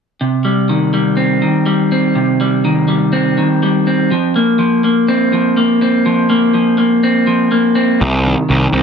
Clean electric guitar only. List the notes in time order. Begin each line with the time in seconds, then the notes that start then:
0.21 C3
0.45 G3
0.69 D#3
0.94 G3
1.17 C4
1.42 D#3
1.66 G3
1.92 C4
2.15 C3
2.41 G3
2.65 D#3
2.88 G3
3.13 C4
3.38 D#3
3.63 G3
3.87 C4
4.11 F3
4.36 A#3
4.59 F3
4.84 A#3
5.08 C4
5.33 F3
5.57 A#3
5.82 C4
6.06 F3
6.30 A#3
6.54 F3
6.78 A#3
7.03 C4
7.27 F3
7.52 A#3
7.75 C4
8.00 C3
8.25 D#3
8.49 D#3
8.74 C4